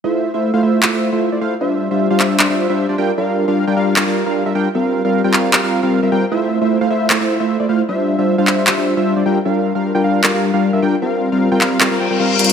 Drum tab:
HH |--------------------------------|--------------------------------|--------------------------------|--------------------------------|
CP |----------------x---------------|------------x---x---------------|----------------x---------------|------------x---x---------------|

HH |--------------------------------|--------------------------------|--------------------------------|----------------------------xxx-|
CP |----------------x---------------|------------x---x---------------|----------------x---------------|------------x---x---------------|